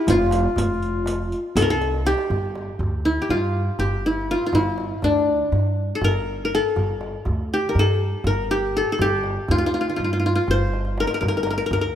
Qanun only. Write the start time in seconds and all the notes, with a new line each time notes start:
Already playing: E4 G4
0.10 F4
1.57 A4
1.62 A#4
1.70 A4
2.06 G4
3.05 E4
3.22 G4
3.30 F4
3.79 G4
4.06 E4
4.31 F4
4.46 F4
4.55 E4
5.04 D4
5.95 A4
6.04 A#4
6.45 A#4
6.55 A4
7.54 G4
7.69 A#4
7.79 A4
8.27 A#4
8.51 G4
8.77 A4
8.92 A4
9.02 G4
9.51 F4
9.58 F4
9.66 F4
9.74 F4
9.81 F4
9.89 F4
9.96 F4
10.04 F4
10.13 F4
10.20 F4
10.26 F4
10.35 F4
10.51 C5
11.00 A#4
11.07 A#4
11.14 A#4
11.21 A#4
11.28 A#4
11.37 A#4
11.43 A#4
11.51 A#4
11.58 A#4
11.66 A#4
11.73 A#4
11.81 A#4